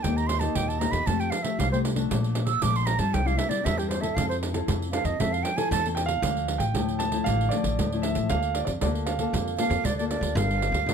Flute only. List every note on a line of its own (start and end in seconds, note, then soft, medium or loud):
0.03 0.18 G5 medium
0.17 0.28 A#5 medium
0.27 0.41 C6 loud
0.40 0.57 A5 medium
0.55 0.70 G5 medium
0.69 0.81 A5 medium
0.79 0.93 A#5 medium
0.91 1.08 B5 loud
1.07 1.21 A5 medium
1.20 1.32 G5 medium
1.30 1.44 F5 medium
1.43 1.60 E5 medium
1.59 1.71 F5 medium
1.72 1.80 C5 medium
2.47 2.64 E6 medium
2.62 2.78 D6 medium
2.76 2.88 C6 medium
2.86 3.01 A#5 medium
2.99 3.15 A5 medium
3.14 3.28 G5 medium
3.27 3.39 F5 medium
3.38 3.51 E5 medium
3.49 3.66 D5 medium
3.65 3.80 E5 loud
3.78 3.90 G4 medium
3.89 4.02 C5 medium
4.01 4.16 E5 medium
4.15 4.28 F5 medium
4.29 4.37 C5 medium
4.92 5.07 F5 medium
5.05 5.21 D#5 medium
5.20 5.34 E5 medium
5.33 5.45 F5 medium
5.43 5.58 G5 medium
5.57 5.71 G#5 medium
5.72 5.87 A5 loud
9.58 9.87 F5 loud
9.85 9.96 D5 medium
9.97 10.08 D5 medium
10.09 10.37 D5 medium
10.36 10.94 F5 loud